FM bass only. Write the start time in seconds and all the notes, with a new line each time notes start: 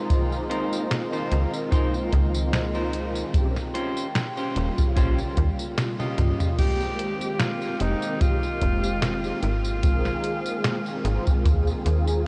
1.32 C#2
2.13 C#2
4.56 D#1
4.97 A#1
5.37 D#2
6.18 C#2
7.81 F1
8.62 F1
9.43 G#1
11.05 G#1
11.46 D#2
11.86 D#2